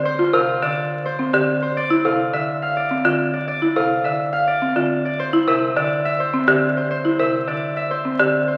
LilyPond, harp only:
\new Staff \with { instrumentName = "Harp" } { \time 3/4 \key f \major \tempo 4 = 105 <c'' d'' f''>8 f''8 d''8. c''4 c''16 | d''8 f''8 e''8 f''16 d''4 d''16 | d''8 f''8 e''8 f''16 d''4 d''16 | c''8 e''8 d''8 e''16 c''4 c''16 |
c''8 e''8 d''8 e''16 c''4 c''16 | }